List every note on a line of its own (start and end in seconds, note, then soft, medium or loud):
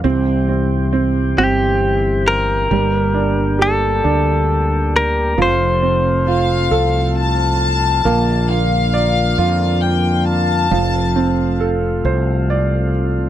0.04 1.34 C2 loud
0.04 2.68 E3 medium
0.04 2.68 G3 medium
0.04 0.47 C4 medium
0.04 2.68 C4 medium
0.04 5.34 G4 medium
0.49 0.91 C4 medium
0.93 1.36 C4 medium
1.38 2.67 G1 medium
1.38 2.67 C4 medium
1.38 2.30 G4 medium
2.28 3.62 A#4 medium
2.71 4.01 G1 loud
2.71 5.35 D3 medium
2.71 5.34 G3 medium
2.71 5.35 G3 medium
2.71 5.36 A#3 medium
3.14 4.03 D4 medium
3.59 5.33 G4 medium
3.59 4.96 A4 medium
4.04 5.34 D2 medium
4.04 5.34 D4 medium
4.96 5.41 A#4 loud
5.38 6.67 F1 loud
5.38 8.02 C3 medium
5.38 8.01 F3 medium
5.38 10.68 F3 medium
5.38 8.02 A3 medium
5.38 8.02 F4 medium
5.42 7.58 C5 loud
5.82 7.56 C4 medium
6.27 8.01 F4 medium
6.27 7.12 F5 loud
6.71 8.01 C2 medium
6.71 8.01 A4 medium
7.16 8.50 A5 loud
8.04 9.34 A#1 loud
8.04 10.69 D3 medium
8.04 10.69 A#3 medium
8.04 10.68 A#3 medium
8.04 13.29 F4 medium
8.49 9.37 F4 medium
8.49 9.83 F5 loud
8.94 10.68 D5 medium
9.38 10.68 F2 medium
9.38 10.68 F4 medium
9.83 10.27 G5 medium
10.28 11.57 A5 loud
10.71 12.01 F1 loud
10.71 13.29 C3 medium
10.71 13.29 F3 medium
10.71 13.29 A3 medium
11.16 12.90 C4 medium
11.60 13.29 A4 medium
12.05 13.29 C2 medium
12.05 13.29 C5 medium
12.50 13.29 D5 medium